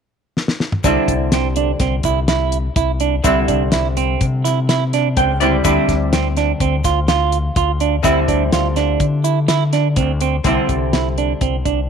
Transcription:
0.37 snare medium
0.48 snare medium
0.60 snare medium
0.72 mid tom medium
0.84 0.95 C2 medium
0.84 3.21 D3 medium
0.84 3.21 G3 medium
0.84 3.21 C4 medium
0.84 1.13 D4 medium
0.84 3.21 E4 medium
0.84 kick loud
0.84 closed hi-hat medium
0.84 shaker medium
1.08 1.70 C2 medium
1.08 kick medium
1.08 closed hi-hat medium
1.08 shaker soft
1.32 1.47 C4 medium
1.32 snare loud
1.32 closed hi-hat medium
1.56 1.71 D4 medium
1.56 closed hi-hat medium
1.80 2.01 C2 medium
1.80 1.95 C4 medium
1.80 kick medium
1.80 snare soft
1.80 closed hi-hat medium
2.03 2.65 C2 medium
2.03 2.19 E4 medium
2.03 kick medium
2.03 closed hi-hat medium
2.03 shaker soft
2.28 2.57 E4 medium
2.28 snare medium
2.28 closed hi-hat medium
2.28 shaker soft
2.52 closed hi-hat medium
2.76 3.17 C2 medium
2.76 2.91 E4 medium
2.76 kick loud
2.76 closed hi-hat medium
2.76 shaker soft
3.00 3.15 D4 medium
3.00 closed hi-hat medium
3.00 shaker soft
3.24 3.45 C2 medium
3.24 5.36 D3 medium
3.24 5.37 G3 medium
3.24 5.37 C4 medium
3.24 3.39 E4 medium
3.24 5.37 E4 medium
3.24 kick loud
3.24 closed hi-hat medium
3.24 shaker medium
3.48 3.69 C2 medium
3.48 3.62 D4 medium
3.48 kick medium
3.48 closed hi-hat medium
3.48 shaker soft
3.72 4.14 C2 medium
3.72 3.87 E4 medium
3.72 snare loud
3.72 closed hi-hat medium
3.97 4.25 C4 medium
3.97 closed hi-hat medium
4.21 5.18 C3 medium
4.21 kick medium
4.21 closed hi-hat medium
4.45 4.59 E4 medium
4.45 snare soft
4.45 closed hi-hat medium
4.45 shaker soft
4.69 4.83 E4 medium
4.69 snare medium
4.69 closed hi-hat medium
4.69 shaker soft
4.93 5.08 D4 medium
4.93 snare soft
4.93 closed hi-hat medium
5.17 5.58 C#2 loud
5.17 5.31 C4 medium
5.17 5.39 G5 medium
5.17 kick loud
5.17 closed hi-hat medium
5.17 shaker soft
5.40 5.63 D3 soft
5.40 5.63 G3 soft
5.40 5.63 C4 soft
5.40 5.56 C4 medium
5.40 5.64 E4 medium
5.40 5.63 D5 medium
5.40 closed hi-hat medium
5.40 shaker soft
5.64 5.75 D2 medium
5.64 8.00 D3 medium
5.64 8.01 G3 medium
5.64 8.01 C4 medium
5.64 5.93 D4 medium
5.64 8.01 E4 medium
5.64 kick loud
5.64 closed hi-hat medium
5.64 shaker medium
5.89 6.50 D2 medium
5.89 kick medium
5.89 snare soft
5.89 closed hi-hat medium
5.89 shaker soft
6.13 6.27 C4 medium
6.13 snare loud
6.13 closed hi-hat medium
6.37 6.51 D4 medium
6.37 snare soft
6.37 closed hi-hat medium
6.60 6.81 D2 medium
6.60 6.75 C4 medium
6.60 kick medium
6.60 closed hi-hat medium
6.84 7.46 D2 medium
6.84 6.99 F4 medium
6.84 kick medium
6.84 snare soft
6.84 closed hi-hat medium
6.84 shaker soft
7.08 7.37 F4 medium
7.08 snare loud
7.08 closed hi-hat medium
7.08 shaker soft
7.32 closed hi-hat medium
7.56 7.97 D2 loud
7.56 7.71 F4 medium
7.56 kick loud
7.56 closed hi-hat medium
7.56 shaker soft
7.80 7.95 D4 medium
7.80 closed hi-hat medium
7.80 shaker soft
8.03 8.25 D2 medium
8.03 10.40 D3 medium
8.03 10.40 G3 medium
8.03 10.40 C4 medium
8.03 10.41 E4 medium
8.03 8.19 E4 medium
8.03 kick loud
8.03 closed hi-hat medium
8.03 shaker medium
8.28 8.49 D2 medium
8.28 8.43 D4 medium
8.28 kick medium
8.28 closed hi-hat medium
8.28 shaker soft
8.52 8.93 D2 loud
8.52 8.67 F4 medium
8.52 snare loud
8.52 closed hi-hat medium
8.52 shaker soft
8.76 9.05 D4 medium
8.76 snare soft
8.76 closed hi-hat medium
8.76 shaker soft
9.00 9.98 D3 medium
9.00 kick medium
9.00 closed hi-hat medium
9.24 9.39 E4 medium
9.24 closed hi-hat medium
9.24 shaker soft
9.48 9.63 E4 medium
9.48 snare loud
9.48 closed hi-hat medium
9.48 shaker soft
9.73 9.87 D4 medium
9.73 snare soft
9.73 closed hi-hat medium
9.96 10.38 D2 medium
9.96 10.11 C4 medium
9.96 kick loud
9.96 closed hi-hat medium
10.21 10.36 C4 medium
10.21 closed hi-hat medium
10.21 shaker soft
10.44 10.55 C2 medium
10.44 11.89 D3 medium
10.44 11.89 G3 medium
10.44 11.89 C4 medium
10.44 10.74 C4 medium
10.44 11.89 E4 medium
10.44 kick medium
10.44 closed hi-hat medium
10.69 11.31 C2 medium
10.69 kick medium
10.69 closed hi-hat medium
10.93 11.07 E4 medium
10.93 snare loud
10.93 closed hi-hat medium
11.18 11.32 D4 medium
11.18 closed hi-hat soft
11.41 11.62 C2 medium
11.41 11.55 C4 medium
11.41 kick medium
11.41 closed hi-hat medium
11.65 11.89 C2 medium
11.65 11.80 D4 medium
11.65 kick medium
11.65 closed hi-hat medium

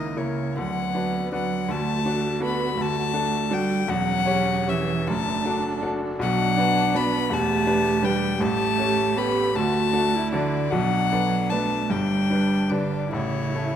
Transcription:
0.00 0.59 C#2 medium
0.00 0.59 C#3 medium
0.00 0.20 D#3 medium
0.00 0.12 A#3 medium
0.00 0.53 A#3 medium
0.00 0.12 E4 soft
0.00 0.13 A#4 medium
0.00 0.19 D#5 medium
0.16 0.60 C#3 medium
0.16 0.53 A#3 soft
0.16 0.53 E4 soft
0.16 0.53 A#4 soft
0.16 0.57 C#5 medium
0.57 0.93 D2 medium
0.57 0.93 D3 medium
0.57 1.32 F#3 medium
0.57 1.65 B3 medium
0.57 1.31 F#5 medium
0.94 1.28 D4 medium
0.94 1.28 F#4 soft
0.94 1.28 B4 medium
1.32 1.71 F#3 medium
1.32 1.65 D4 medium
1.32 1.65 F#4 soft
1.32 1.65 B4 medium
1.32 1.72 F#5 medium
1.68 2.04 D2 medium
1.68 2.04 D3 medium
1.68 2.43 A3 medium
1.68 3.85 F#4 medium
1.68 2.43 A5 loud
2.05 2.38 D4 medium
2.05 2.38 F#4 medium
2.05 2.38 A4 medium
2.40 2.77 B3 medium
2.40 2.74 D4 medium
2.40 2.74 F#4 medium
2.40 2.74 A4 medium
2.45 2.83 B5 medium
2.77 3.13 D2 medium
2.77 3.13 D3 medium
2.77 3.53 A3 medium
2.77 3.55 A5 loud
3.14 3.47 D4 medium
3.14 3.47 F#4 medium
3.14 3.48 A4 medium
3.51 3.89 G3 medium
3.51 3.85 D4 medium
3.51 3.85 F#4 medium
3.51 3.85 A4 medium
3.51 3.91 G5 loud
3.88 4.26 E1 medium
3.88 4.26 E2 medium
3.88 4.71 F#3 medium
3.88 5.04 C#4 medium
3.88 4.70 F#5 loud
4.26 4.63 C#4 medium
4.26 4.63 G4 medium
4.26 4.64 C#5 medium
4.67 5.11 E3 medium
4.67 5.03 C#4 medium
4.67 5.04 G4 medium
4.67 5.04 C#5 medium
4.67 5.09 E5 loud
5.07 5.44 F#1 medium
5.07 5.45 F#2 medium
5.07 5.84 A3 medium
5.07 6.17 D4 medium
5.07 5.83 A5 loud
5.45 5.79 D4 medium
5.45 5.79 F#4 medium
5.45 5.79 A4 medium
5.82 6.16 D4 medium
5.82 6.16 F#4 medium
5.82 6.16 A4 medium
6.19 6.56 B1 medium
6.19 6.57 B2 medium
6.19 6.98 F#3 loud
6.19 7.28 D4 medium
6.19 6.98 F#5 loud
6.57 6.91 D4 medium
6.57 6.92 F#4 medium
6.57 6.92 B4 medium
6.94 7.32 B3 medium
6.94 7.28 D4 medium
6.94 7.28 F#4 medium
6.94 7.28 B4 medium
6.94 7.35 B5 loud
7.30 7.66 E1 medium
7.30 7.65 E2 medium
7.30 8.05 A3 loud
7.30 8.39 G4 medium
7.30 8.06 A5 loud
7.66 7.99 D4 medium
7.66 8.00 G4 medium
7.66 8.00 B4 medium
8.03 8.39 G3 medium
8.03 8.37 D4 medium
8.03 8.37 G4 medium
8.03 8.37 B4 medium
8.03 8.44 G5 loud
8.40 8.78 A1 medium
8.40 8.77 A2 medium
8.40 9.18 A3 loud
8.40 9.59 G4 medium
8.40 9.19 A5 loud
8.78 9.13 C#4 medium
8.78 9.14 G4 medium
8.78 9.14 A4 medium
9.17 9.55 B3 medium
9.17 9.51 C#4 medium
9.17 9.52 G4 medium
9.17 9.52 A4 medium
9.17 9.57 B5 loud
9.56 9.93 D2 medium
9.56 9.93 D3 medium
9.56 10.36 A3 loud
9.56 10.17 F#4 medium
9.56 10.32 A5 loud
9.93 10.28 D4 medium
9.93 10.28 F#4 medium
9.93 10.28 A4 medium
10.16 10.73 E4 medium
10.32 10.74 D3 medium
10.32 10.68 D4 medium
10.32 10.68 F#4 medium
10.32 10.68 A4 medium
10.32 10.73 D5 medium
10.71 11.10 B1 medium
10.71 11.11 B2 medium
10.71 11.54 F#3 medium
10.71 11.89 D4 medium
10.71 11.51 F#5 loud
11.12 11.47 D4 medium
11.12 11.47 A4 medium
11.12 11.47 B4 medium
11.50 11.92 A3 medium
11.50 11.86 D4 soft
11.50 11.86 A4 medium
11.50 11.87 B4 medium
11.50 11.92 A5 loud
11.90 12.28 G1 medium
11.90 12.28 G2 medium
11.90 12.73 G3 medium
11.90 13.11 D4 medium
11.90 12.71 G5 loud
12.30 12.67 D4 soft
12.30 12.67 G4 medium
12.30 12.67 B4 medium
12.69 13.13 D3 medium
12.69 13.08 D4 medium
12.69 13.08 G4 medium
12.69 13.09 B4 medium
12.69 13.12 D5 medium
13.11 13.53 A1 medium
13.11 13.53 A2 medium
13.11 13.76 C#3 medium
13.11 13.76 E4 medium
13.11 13.76 C#5 medium
13.55 13.76 A3 medium
13.55 13.76 E4 medium
13.55 13.76 A4 medium

